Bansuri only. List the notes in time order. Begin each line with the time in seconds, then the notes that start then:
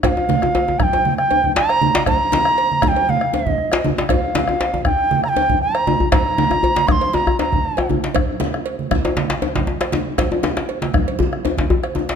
0.04 F5 G5
0.79 G5 A#5
1.17 G5
1.56 A#5
2.07 A#5
2.84 G5 A#5
3.10 F5
3.35 D#5
4.10 F5
4.86 G5
5.24 A#5
5.29 G5
5.62 A#5
6.12 A#5
6.88 C6 D#6
7.14 A#5
7.41 A#5